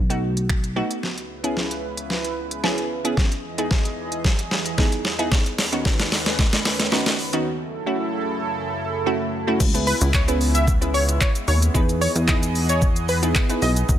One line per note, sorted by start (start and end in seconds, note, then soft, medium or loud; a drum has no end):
0.00 0.82 B1 loud
0.10 0.45 A3 medium
0.10 0.45 B3 medium
0.10 0.46 D#4 medium
0.10 0.46 F#4 medium
0.10 closed hi-hat medium
0.37 closed hi-hat medium
0.49 finger snap loud
0.49 kick loud
0.64 closed hi-hat medium
0.76 1.03 A3 medium
0.76 1.03 B3 medium
0.76 1.03 D#4 medium
0.76 1.03 F#4 loud
0.91 closed hi-hat medium
1.03 3.15 C#2 medium
1.03 3.15 C#3 medium
1.03 3.15 E4 medium
1.03 3.15 B4 medium
1.03 snare medium
1.18 closed hi-hat soft
1.44 2.01 B3 medium
1.44 2.01 C#4 medium
1.44 2.01 E4 medium
1.44 2.02 G#4 medium
1.44 closed hi-hat medium
1.57 snare medium
1.71 closed hi-hat medium
1.97 closed hi-hat medium
2.10 snare medium
2.24 closed hi-hat medium
2.51 closed hi-hat medium
2.64 2.86 B3 medium
2.64 2.86 C#4 medium
2.64 2.86 E4 medium
2.64 2.86 G#4 loud
2.64 snare medium
2.78 closed hi-hat medium
3.05 3.17 B3 medium
3.05 3.17 C#4 medium
3.05 3.17 E4 medium
3.05 3.18 G#4 loud
3.05 closed hi-hat medium
3.17 5.30 E2 medium
3.17 5.30 E3 medium
3.17 5.30 G#4 medium
3.17 5.30 D#5 medium
3.17 kick loud
3.17 snare medium
3.32 closed hi-hat soft
3.58 4.16 B3 medium
3.58 4.16 D#4 medium
3.58 4.16 E4 medium
3.58 4.16 G#4 medium
3.58 closed hi-hat medium
3.71 kick loud
3.71 snare medium
3.85 closed hi-hat medium
4.12 closed hi-hat medium
4.24 kick loud
4.24 snare medium
4.39 closed hi-hat medium
4.51 snare medium
4.66 closed hi-hat medium
4.78 5.00 B3 loud
4.78 5.00 D#4 medium
4.78 5.00 E4 medium
4.78 5.00 G#4 loud
4.78 kick loud
4.78 snare medium
4.92 closed hi-hat medium
5.05 snare medium
5.19 5.31 B3 medium
5.19 5.32 D#4 medium
5.19 5.32 E4 medium
5.19 5.32 G#4 loud
5.19 closed hi-hat medium
5.32 7.44 D#2 medium
5.32 7.44 D#3 medium
5.32 7.44 C#4 medium
5.32 7.44 B4 medium
5.32 kick loud
5.32 snare loud
5.46 closed hi-hat soft
5.58 snare loud
5.58 open hi-hat medium
5.72 6.30 D#3 medium
5.72 6.30 B3 medium
5.72 6.30 C#4 medium
5.72 6.30 D#4 medium
5.72 6.30 F#4 medium
5.72 closed hi-hat medium
5.85 kick loud
5.85 snare medium
6.00 snare loud
6.00 closed hi-hat medium
6.12 snare loud
6.12 open hi-hat medium
6.26 snare loud
6.26 closed hi-hat medium
6.39 kick loud
6.39 snare loud
6.53 snare loud
6.53 closed hi-hat medium
6.65 snare loud
6.65 open hi-hat medium
6.80 snare loud
6.80 closed hi-hat medium
6.92 7.14 D#3 loud
6.92 7.14 B3 medium
6.92 7.14 C#4 medium
6.92 7.14 D#4 medium
6.92 7.14 F#4 loud
6.92 snare loud
7.06 snare loud
7.06 closed hi-hat medium
7.19 open hi-hat medium
7.33 7.46 D#3 medium
7.33 7.46 B3 medium
7.33 7.46 C#4 medium
7.33 7.46 D#4 medium
7.33 7.46 F#4 loud
7.33 closed hi-hat medium
7.46 9.58 F#2 medium
7.46 9.58 C#3 medium
7.46 9.58 E4 medium
7.46 9.58 A4 medium
7.86 8.44 A3 medium
7.86 8.44 C#4 medium
7.86 8.44 E4 medium
7.86 8.44 F#4 medium
9.06 9.28 A3 loud
9.06 9.29 C#4 medium
9.06 9.29 E4 medium
9.06 9.29 F#4 loud
9.47 9.60 A3 medium
9.47 9.60 C#4 medium
9.47 9.60 E4 medium
9.47 9.60 F#4 loud
9.60 9.93 C#2 loud
9.60 11.72 C#3 medium
9.60 11.72 G#3 medium
9.60 11.72 B3 medium
9.60 11.72 E4 medium
9.60 kick loud
9.60 crash loud
9.60 shaker medium
9.74 10.03 B3 medium
9.74 10.03 C#4 medium
9.74 10.03 E4 medium
9.74 10.03 G#4 medium
9.74 10.03 B4 medium
9.74 closed hi-hat medium
9.74 shaker medium
9.87 9.96 B4 medium
9.87 open hi-hat medium
9.87 shaker medium
10.01 11.19 C#2 loud
10.01 closed hi-hat medium
10.01 shaker medium
10.14 10.24 C#5 medium
10.14 kick loud
10.14 clap loud
10.14 shaker medium
10.28 10.57 B3 medium
10.28 10.57 C#4 medium
10.28 10.57 E4 medium
10.28 10.57 G#4 medium
10.28 10.57 B4 loud
10.28 closed hi-hat medium
10.28 shaker medium
10.41 open hi-hat medium
10.41 shaker medium
10.55 10.72 E5 medium
10.55 closed hi-hat medium
10.55 shaker medium
10.68 kick loud
10.68 shaker medium
10.81 11.32 B3 medium
10.81 11.32 C#4 medium
10.81 11.32 E4 medium
10.81 11.32 G#4 medium
10.81 11.32 B4 medium
10.81 closed hi-hat medium
10.81 shaker medium
10.94 11.03 C#5 medium
10.94 open hi-hat medium
10.94 shaker medium
11.09 closed hi-hat medium
11.09 shaker medium
11.21 11.30 C#5 medium
11.21 kick loud
11.21 clap loud
11.21 shaker medium
11.35 closed hi-hat medium
11.35 shaker medium
11.48 11.69 D#2 loud
11.48 11.57 C#5 medium
11.48 open hi-hat medium
11.48 shaker medium
11.62 closed hi-hat medium
11.62 shaker medium
11.74 12.08 E2 loud
11.74 13.87 E3 medium
11.74 12.03 B3 loud
11.74 13.99 B3 medium
11.74 12.03 D#4 medium
11.74 12.03 E4 medium
11.74 12.04 G#4 loud
11.74 13.87 G#4 medium
11.74 12.04 B4 loud
11.74 13.87 D#5 medium
11.74 kick loud
11.74 shaker medium
11.89 closed hi-hat soft
11.89 shaker medium
12.01 12.11 C#5 medium
12.01 open hi-hat medium
12.01 shaker medium
12.16 13.33 E2 loud
12.16 closed hi-hat medium
12.16 shaker medium
12.28 12.79 B3 medium
12.28 12.79 D#4 medium
12.28 12.79 E4 medium
12.28 12.79 G#4 medium
12.28 12.79 B4 medium
12.28 12.37 D#5 medium
12.28 kick loud
12.28 clap loud
12.28 shaker medium
12.43 closed hi-hat medium
12.43 shaker medium
12.55 open hi-hat medium
12.55 shaker medium
12.69 12.87 C#5 medium
12.69 closed hi-hat medium
12.69 shaker medium
12.82 kick loud
12.82 shaker medium
12.96 closed hi-hat medium
12.96 shaker medium
13.09 13.18 B4 medium
13.09 open hi-hat medium
13.09 shaker soft
13.23 13.36 B3 medium
13.23 13.36 D#4 medium
13.23 13.36 E4 medium
13.23 13.36 G#4 medium
13.23 13.36 B4 medium
13.23 closed hi-hat medium
13.23 shaker medium
13.35 kick loud
13.35 clap loud
13.35 shaker medium
13.49 13.78 B3 medium
13.49 13.78 D#4 medium
13.49 13.78 E4 medium
13.49 13.78 G#4 medium
13.49 13.78 B4 medium
13.49 closed hi-hat medium
13.49 shaker medium
13.62 13.83 B1 loud
13.62 13.71 D#5 medium
13.62 open hi-hat medium
13.62 shaker soft
13.76 closed hi-hat medium
13.76 shaker medium
13.89 13.99 D#2 loud
13.89 13.99 D#3 medium
13.89 13.99 C#4 medium
13.89 13.99 F#4 medium
13.89 kick loud
13.89 shaker medium